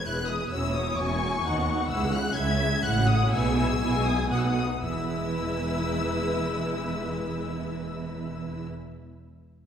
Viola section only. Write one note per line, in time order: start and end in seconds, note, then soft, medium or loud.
0.06 0.17 G#3 medium
0.06 0.17 E4 medium
0.18 0.29 B3 medium
0.18 0.29 G#4 medium
0.28 0.41 G#3 medium
0.28 0.40 E4 medium
0.40 0.52 B3 medium
0.40 0.52 G#4 medium
0.52 0.63 C#4 medium
0.52 0.63 F#4 medium
0.63 0.75 A#3 medium
0.63 0.75 E4 medium
0.74 0.86 C#4 medium
0.74 0.86 F#4 medium
0.86 0.98 A#3 medium
0.86 0.98 E4 medium
0.97 1.09 C#4 medium
0.97 1.09 F#4 medium
1.09 1.21 A#3 medium
1.09 1.21 E4 medium
1.20 1.33 C#4 medium
1.20 1.33 F#4 medium
1.33 1.45 A#3 medium
1.33 1.45 E4 medium
1.44 1.54 D#4 medium
1.44 1.55 F#4 medium
1.55 1.68 B3 medium
1.55 1.66 D#4 medium
1.67 1.78 D#4 medium
1.67 1.79 F#4 medium
1.79 1.91 B3 medium
1.79 1.91 D#4 medium
1.90 2.01 G#3 medium
1.90 2.01 E4 loud
2.03 2.14 C#4 medium
2.03 2.14 G#4 medium
2.14 2.26 G#3 medium
2.14 2.26 E4 medium
2.25 2.37 C#4 medium
2.25 2.37 G#4 medium
2.37 2.48 G#3 medium
2.37 2.48 E4 medium
2.49 2.61 C#4 medium
2.49 2.61 G#4 medium
2.61 2.73 G#3 medium
2.61 2.73 E4 medium
2.72 2.84 C#4 medium
2.72 2.84 G#4 medium
2.84 2.95 A3 medium
2.84 2.95 E4 medium
2.96 3.09 C#4 medium
2.96 3.08 F#4 medium
3.08 3.20 A3 medium
3.08 3.20 E4 loud
3.20 3.32 C#4 medium
3.20 3.32 F#4 medium
3.32 3.44 B3 medium
3.32 3.44 E4 loud
3.44 3.57 G#3 medium
3.44 3.57 G#4 medium
3.56 3.69 B3 medium
3.56 3.69 E4 medium
3.69 3.81 G#3 medium
3.69 3.82 G#4 medium
3.81 3.93 B3 medium
3.81 3.93 E4 medium
3.94 4.06 G#3 medium
3.94 4.06 G#4 medium
4.06 4.19 B3 medium
4.06 4.19 E4 medium
4.19 4.31 G#3 medium
4.19 4.32 G#4 medium
4.31 4.43 B3 medium
4.31 4.43 F#4 medium
4.43 4.57 A3 medium
4.43 4.57 D#4 medium
4.56 4.70 B3 medium
4.56 4.70 F#4 medium
4.69 4.83 A3 medium
4.69 4.83 D#4 medium
4.83 8.65 G#3 loud
4.83 8.65 E4 medium